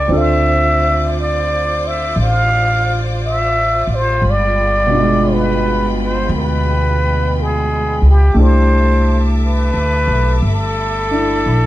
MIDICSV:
0, 0, Header, 1, 5, 480
1, 0, Start_track
1, 0, Tempo, 1034483
1, 41, Time_signature, 4, 2, 24, 8
1, 5412, End_track
2, 0, Start_track
2, 0, Title_t, "String section"
2, 0, Program_c, 0, 48
2, 32, Note_on_c, 0, 74, 50
2, 35, Note_on_c, 0, 65, 53
2, 36, Note_on_c, 0, 72, 57
2, 39, Note_on_c, 0, 86, 63
2, 1935, Note_off_c, 0, 74, 0
2, 1937, Note_off_c, 0, 72, 0
2, 1938, Note_off_c, 0, 86, 0
2, 1958, Note_on_c, 0, 79, 48
2, 1958, Note_on_c, 0, 83, 61
2, 1962, Note_on_c, 0, 56, 58
2, 3859, Note_off_c, 0, 65, 0
2, 3862, Note_off_c, 0, 79, 0
2, 3862, Note_off_c, 0, 83, 0
2, 3864, Note_off_c, 0, 56, 0
2, 3880, Note_on_c, 0, 86, 57
2, 3883, Note_on_c, 0, 69, 53
2, 3883, Note_on_c, 0, 81, 45
2, 3885, Note_on_c, 0, 76, 49
2, 4832, Note_off_c, 0, 81, 0
2, 4839, Note_on_c, 0, 83, 53
2, 5412, Note_off_c, 0, 69, 0
2, 5412, Note_off_c, 0, 76, 0
2, 5412, Note_off_c, 0, 83, 0
2, 5412, Note_off_c, 0, 86, 0
2, 5412, End_track
3, 0, Start_track
3, 0, Title_t, "Muted trumpet"
3, 0, Program_c, 1, 59
3, 0, Note_on_c, 1, 74, 80
3, 80, Note_on_c, 1, 76, 95
3, 87, Note_off_c, 1, 74, 0
3, 540, Note_off_c, 1, 76, 0
3, 559, Note_on_c, 1, 74, 75
3, 871, Note_on_c, 1, 76, 72
3, 878, Note_off_c, 1, 74, 0
3, 1031, Note_on_c, 1, 77, 90
3, 1038, Note_off_c, 1, 76, 0
3, 1412, Note_off_c, 1, 77, 0
3, 1513, Note_on_c, 1, 76, 87
3, 1834, Note_on_c, 1, 72, 80
3, 1841, Note_off_c, 1, 76, 0
3, 1998, Note_on_c, 1, 74, 86
3, 2005, Note_off_c, 1, 72, 0
3, 2478, Note_on_c, 1, 71, 70
3, 2485, Note_off_c, 1, 74, 0
3, 2781, Note_off_c, 1, 71, 0
3, 2805, Note_on_c, 1, 72, 69
3, 2932, Note_off_c, 1, 72, 0
3, 2958, Note_on_c, 1, 71, 72
3, 3443, Note_on_c, 1, 68, 69
3, 3450, Note_off_c, 1, 71, 0
3, 3744, Note_off_c, 1, 68, 0
3, 3757, Note_on_c, 1, 67, 68
3, 3907, Note_on_c, 1, 72, 83
3, 3914, Note_off_c, 1, 67, 0
3, 4292, Note_off_c, 1, 72, 0
3, 4393, Note_on_c, 1, 71, 77
3, 4838, Note_off_c, 1, 71, 0
3, 4870, Note_on_c, 1, 69, 80
3, 5412, Note_off_c, 1, 69, 0
3, 5412, End_track
4, 0, Start_track
4, 0, Title_t, "Grand piano"
4, 0, Program_c, 2, 0
4, 0, Control_c, 2, 64, 127
4, 0, Note_on_c, 2, 49, 45
4, 0, Note_on_c, 2, 64, 39
4, 0, Note_on_c, 2, 70, 49
4, 36, Note_on_c, 2, 60, 46
4, 45, Note_on_c, 2, 62, 41
4, 48, Control_c, 2, 64, 0
4, 49, Note_off_c, 2, 70, 0
4, 51, Note_off_c, 2, 49, 0
4, 51, Note_off_c, 2, 64, 0
4, 51, Note_on_c, 2, 65, 43
4, 59, Note_on_c, 2, 69, 54
4, 116, Control_c, 2, 64, 127
4, 1956, Note_off_c, 2, 60, 0
4, 1960, Note_off_c, 2, 62, 0
4, 1963, Note_off_c, 2, 65, 0
4, 1965, Control_c, 2, 64, 0
4, 1967, Note_off_c, 2, 69, 0
4, 2048, Control_c, 2, 64, 127
4, 2259, Note_on_c, 2, 47, 44
4, 2277, Note_on_c, 2, 62, 38
4, 2295, Note_on_c, 2, 65, 41
4, 2310, Note_on_c, 2, 56, 47
4, 3870, Note_off_c, 2, 47, 0
4, 3871, Note_on_c, 2, 57, 39
4, 3873, Note_off_c, 2, 62, 0
4, 3880, Note_on_c, 2, 62, 35
4, 3887, Control_c, 2, 64, 0
4, 3888, Note_off_c, 2, 65, 0
4, 3889, Note_on_c, 2, 64, 34
4, 3894, Note_on_c, 2, 67, 45
4, 3895, Note_off_c, 2, 56, 0
4, 3978, Control_c, 2, 64, 127
4, 5148, Note_off_c, 2, 62, 0
4, 5155, Note_on_c, 2, 62, 34
4, 5163, Note_off_c, 2, 64, 0
4, 5170, Note_on_c, 2, 64, 34
4, 5412, Note_off_c, 2, 57, 0
4, 5412, Note_off_c, 2, 62, 0
4, 5412, Note_off_c, 2, 64, 0
4, 5412, Note_off_c, 2, 67, 0
4, 5412, End_track
5, 0, Start_track
5, 0, Title_t, "Upright bass"
5, 0, Program_c, 3, 32
5, 42, Note_on_c, 3, 38, 63
5, 981, Note_off_c, 3, 38, 0
5, 1002, Note_on_c, 3, 33, 64
5, 1784, Note_off_c, 3, 33, 0
5, 1797, Note_on_c, 3, 33, 53
5, 1945, Note_off_c, 3, 33, 0
5, 1956, Note_on_c, 3, 31, 64
5, 2900, Note_off_c, 3, 31, 0
5, 2919, Note_on_c, 3, 38, 70
5, 3705, Note_off_c, 3, 38, 0
5, 3720, Note_on_c, 3, 37, 51
5, 3868, Note_off_c, 3, 37, 0
5, 3874, Note_on_c, 3, 36, 59
5, 4499, Note_off_c, 3, 36, 0
5, 4519, Note_on_c, 3, 38, 47
5, 4669, Note_off_c, 3, 38, 0
5, 4675, Note_on_c, 3, 35, 51
5, 4827, Note_off_c, 3, 35, 0
5, 4837, Note_on_c, 3, 31, 66
5, 5299, Note_off_c, 3, 31, 0
5, 5318, Note_on_c, 3, 34, 62
5, 5412, Note_off_c, 3, 34, 0
5, 5412, End_track
0, 0, End_of_file